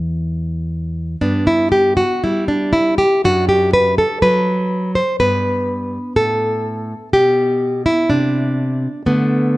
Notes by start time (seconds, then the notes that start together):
Already playing: E2 E3 G3
1.21 G2 B3 D4
1.47 E4
1.72 G4
1.97 F#4
2.24 G3 E4
2.48 D4
2.73 E4
2.98 G4
3.24 F#2 D4 F#4
3.49 G4
3.73 B4
3.98 A4
4.22 F#3 B4
4.95 C5
5.20 G2 B3 B4
6.16 A2 A4
7.13 B2 G4
7.86 E4
8.10 C3 D4
9.06 D3 A3 B3